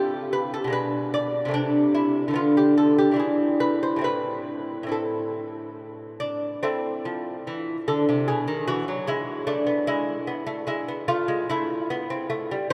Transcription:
lute
Already playing: C3 A3 G4
0.33 B4
0.54 A4
0.64 B2 G#3
0.70 D4 B4
1.14 D5
1.45 C3 A3
1.51 C4 D4
1.95 E4
2.28 D3 A3
2.33 B3 F4
2.57 G4
2.78 A4
2.98 G4
3.11 E3 D4
3.16 E4 G#4
3.60 B4
3.83 C5
3.96 A2 C4
4.01 E4 B4
4.83 A2 C4
4.89 E4 A4
6.20 D4
6.63 A3 C4 E4
7.05 F3
7.47 E3
7.88 D3 A4
8.09 C3
8.28 B2 G#4
8.48 D#3
8.68 E3 F#4
8.88 F#3
9.07 G#3 E4
9.47 A3 D4
9.67 B3
9.87 G#3 E4
10.27 B3
10.47 A3
10.67 G#3 E4
10.88 B3
11.08 A3 F4
11.28 G#3
11.50 A3 E4
11.90 B3
12.10 C4
12.30 A3
12.51 G3

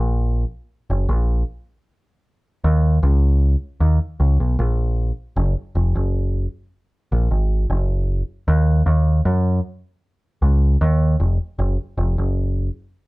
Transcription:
picked electric bass
Already playing: A#1
0.90 F#1
1.09 A#1
2.64 D#2
3.03 C#2
3.80 D#2
4.20 C#2
4.40 B1
4.59 A#1
5.36 F#1
5.75 F1
5.95 F#1
7.12 A#1
7.31 G#1
7.70 F#1
8.48 D#2
8.86 D#2
9.25 F#2
10.42 C#2
10.81 D#2
11.20 F1
11.59 F#1
11.98 F1
12.18 F#1

